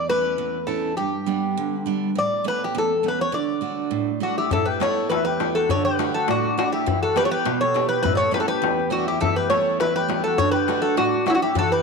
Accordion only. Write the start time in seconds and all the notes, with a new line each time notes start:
4.21 D4
4.37 E4
4.53 E4
4.67 G4
4.82 A4
5.12 E4
5.27 G4
5.56 F#4
5.71 A4
5.86 G4
6.16 F#4
6.30 D4
6.59 D4
6.73 E4
7.01 F#4
7.16 G4
7.24 A4
7.32 G4
7.61 A4
7.91 G4
8.07 E4
8.15 B4
8.20 A4
8.35 G4
8.39 F#4
8.49 G4
8.91 D4
9.06 E4
9.21 E4
9.36 G4
9.50 A4
9.80 E4
9.96 G4
10.26 F#4
10.38 A4
10.53 G4
10.81 F#4
10.98 D4
11.28 C#4 D4
11.34 D4
11.42 E4
11.57 F#4
11.71 G4